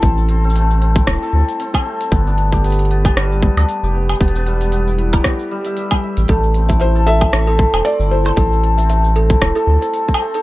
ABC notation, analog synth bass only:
X:1
M:4/4
L:1/16
Q:"Swing 16ths" 1/4=115
K:Am
V:1 name="Analog synth bass" clef=bass
A,,,6- A,,, z E,,, z D,, z4 z | G,,,6- G,,, z G,,,2 z D,, z F,,,2 z | E,,,6- E,,, z8 A,,, | A,,,6- A,,, z A,,,2 z E,,, z G,,,2 z |
A,,,6- A,,, z E,,, z D,, z4 z |]